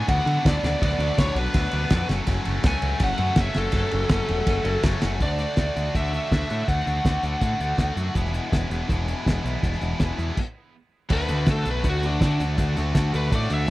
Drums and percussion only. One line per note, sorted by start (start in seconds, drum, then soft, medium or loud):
0.08 kick loud
0.08 ride medium
0.27 ride medium
0.45 kick loud
0.45 snare loud
0.45 ride medium
0.64 snare medium
0.64 ride medium
0.82 kick loud
0.82 ride medium
1.00 ride medium
1.18 kick loud
1.18 snare loud
1.18 ride loud
1.36 ride medium
1.54 kick loud
1.54 ride loud
1.72 ride medium
1.90 kick loud
1.90 snare loud
1.90 ride loud
2.09 snare medium
2.09 ride medium
2.27 kick loud
2.27 ride loud
2.45 ride medium
2.64 kick loud
2.64 snare loud
2.64 ride loud
2.82 ride medium
3.00 kick loud
3.00 ride loud
3.18 ride medium
3.36 kick loud
3.36 snare loud
3.36 ride medium
3.54 snare medium
3.54 ride medium
3.72 kick loud
3.72 ride medium
3.91 ride medium
4.09 kick loud
4.09 snare loud
4.09 ride medium
4.29 ride medium
4.47 kick loud
4.47 ride loud
4.65 ride medium
4.83 kick loud
4.83 snare loud
4.83 ride loud
5.02 snare medium
5.02 ride medium
5.20 kick medium
5.20 closed hi-hat medium
5.39 closed hi-hat medium
5.57 kick loud
5.57 snare loud
5.57 closed hi-hat medium
5.76 closed hi-hat medium
5.95 kick loud
5.95 closed hi-hat medium
6.14 closed hi-hat soft
6.32 kick loud
6.32 snare loud
6.32 closed hi-hat medium
6.50 closed hi-hat medium
6.68 kick medium
6.68 closed hi-hat medium
6.87 closed hi-hat medium
7.05 kick loud
7.05 snare loud
7.05 closed hi-hat medium
7.23 closed hi-hat medium
7.41 kick loud
7.41 closed hi-hat medium
7.61 closed hi-hat medium
7.78 kick medium
7.78 snare loud
7.78 closed hi-hat medium
7.97 closed hi-hat medium
8.15 kick loud
8.15 closed hi-hat medium
8.26 snare soft
8.34 closed hi-hat medium
8.52 kick loud
8.52 snare loud
8.52 closed hi-hat medium
8.71 closed hi-hat medium
8.89 kick loud
8.89 closed hi-hat medium
9.08 closed hi-hat medium
9.26 kick medium
9.26 snare loud
9.26 closed hi-hat medium
9.46 closed hi-hat medium
9.63 kick medium
9.63 closed hi-hat medium
9.73 snare soft
9.81 closed hi-hat medium
10.00 kick loud
10.00 snare loud
10.00 closed hi-hat medium
10.19 closed hi-hat medium
10.37 kick medium
10.37 crash medium
11.10 kick loud
11.10 crash loud
11.20 snare soft
11.28 closed hi-hat medium
11.46 kick loud
11.46 snare loud
11.46 closed hi-hat medium
11.65 closed hi-hat medium
11.84 kick loud
11.84 closed hi-hat medium
12.03 closed hi-hat medium
12.21 kick loud
12.21 snare loud
12.21 closed hi-hat medium
12.40 closed hi-hat medium
12.58 kick loud
12.58 closed hi-hat medium
12.77 closed hi-hat medium
12.95 kick loud
12.95 snare loud
12.95 closed hi-hat medium
13.14 closed hi-hat medium
13.32 kick loud
13.32 closed hi-hat medium
13.42 snare soft
13.50 closed hi-hat medium